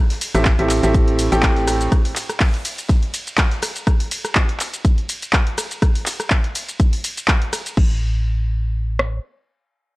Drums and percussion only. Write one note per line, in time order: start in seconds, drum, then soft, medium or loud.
0.10 snare medium
0.10 open hi-hat medium
0.21 open hi-hat loud
0.21 ride medium
0.21 shaker medium
0.34 cross-stick medium
0.34 snare medium
0.34 closed hi-hat soft
0.34 shaker soft
0.45 kick loud
0.45 snare loud
0.45 clap loud
0.45 closed hi-hat medium
0.45 ride medium
0.45 shaker soft
0.59 closed hi-hat soft
0.69 clap soft
0.69 open hi-hat loud
0.69 ride medium
0.69 shaker medium
0.83 closed hi-hat soft
0.83 shaker soft
0.94 kick loud
0.94 closed hi-hat medium
0.94 ride medium
0.94 shaker soft
1.08 closed hi-hat soft
1.19 open hi-hat loud
1.19 ride medium
1.19 shaker medium
1.32 closed hi-hat soft
1.32 ride soft
1.32 shaker soft
1.43 kick loud
1.43 snare loud
1.43 clap loud
1.43 closed hi-hat medium
1.43 ride medium
1.43 shaker soft
1.56 snare soft
1.56 closed hi-hat soft
1.68 cross-stick medium
1.68 snare soft
1.68 open hi-hat loud
1.68 ride medium
1.68 shaker medium
1.81 closed hi-hat soft
1.81 shaker soft
1.92 kick loud
1.92 cross-stick medium
1.92 closed hi-hat medium
1.92 ride medium
1.92 shaker soft
2.05 open hi-hat medium
2.05 ride soft
2.16 clap soft
2.16 open hi-hat loud
2.16 ride medium
2.16 shaker medium
2.30 cross-stick medium
2.30 closed hi-hat soft
2.30 shaker soft
2.40 kick loud
2.40 snare loud
2.40 clap loud
2.40 closed hi-hat medium
2.40 open hi-hat medium
2.40 shaker soft
2.54 snare soft
2.54 closed hi-hat soft
2.65 open hi-hat loud
2.65 ride medium
2.65 shaker medium
2.78 closed hi-hat soft
2.78 shaker soft
2.89 kick loud
2.89 snare loud
2.89 closed hi-hat medium
2.89 ride medium
2.89 shaker soft
3.03 closed hi-hat soft
3.14 open hi-hat loud
3.14 ride medium
3.14 shaker medium
3.27 closed hi-hat soft
3.27 shaker soft
3.38 kick loud
3.38 snare loud
3.38 clap loud
3.38 closed hi-hat medium
3.38 ride loud
3.38 shaker soft
3.51 snare medium
3.51 closed hi-hat soft
3.62 cross-stick medium
3.62 open hi-hat loud
3.62 ride medium
3.62 shaker medium
3.75 closed hi-hat soft
3.75 ride soft
3.75 shaker soft
3.87 kick loud
3.87 cross-stick medium
3.87 closed hi-hat medium
3.87 shaker soft
4.00 open hi-hat medium
4.11 open hi-hat loud
4.11 ride medium
4.11 shaker medium
4.25 cross-stick medium
4.25 closed hi-hat soft
4.25 shaker soft
4.35 kick loud
4.35 clap loud
4.35 closed hi-hat medium
4.35 shaker soft
4.49 closed hi-hat soft
4.60 clap soft
4.60 open hi-hat loud
4.60 ride medium
4.60 shaker medium
4.73 closed hi-hat soft
4.73 shaker soft
4.85 kick loud
4.85 closed hi-hat medium
4.85 shaker soft
4.98 closed hi-hat soft
5.09 open hi-hat loud
5.09 ride medium
5.09 shaker medium
5.22 closed hi-hat soft
5.22 shaker soft
5.33 kick loud
5.33 clap loud
5.33 closed hi-hat medium
5.33 shaker soft
5.47 closed hi-hat soft
5.58 cross-stick medium
5.58 open hi-hat loud
5.58 ride medium
5.58 shaker medium
5.71 closed hi-hat soft
5.71 shaker soft
5.82 kick loud
5.82 cross-stick medium
5.82 closed hi-hat medium
5.82 shaker soft
5.95 open hi-hat medium
6.06 clap soft
6.06 open hi-hat loud
6.06 ride medium
6.06 shaker medium
6.20 cross-stick medium
6.20 closed hi-hat soft
6.20 shaker soft
6.30 kick loud
6.30 clap loud
6.30 closed hi-hat medium
6.30 shaker soft
6.44 closed hi-hat soft
6.55 open hi-hat loud
6.55 ride medium
6.55 shaker medium
6.69 closed hi-hat soft
6.69 shaker soft
6.80 kick loud
6.80 closed hi-hat medium
6.80 shaker soft
6.93 open hi-hat medium
7.04 open hi-hat loud
7.04 ride medium
7.04 shaker medium
7.17 closed hi-hat soft
7.17 shaker soft
7.28 kick loud
7.28 clap loud
7.28 closed hi-hat medium
7.28 shaker soft
7.42 closed hi-hat soft
7.53 cross-stick medium
7.53 open hi-hat loud
7.53 ride medium
7.53 shaker medium
7.66 closed hi-hat soft
7.66 shaker soft
7.77 kick loud
7.77 crash medium
8.99 cross-stick medium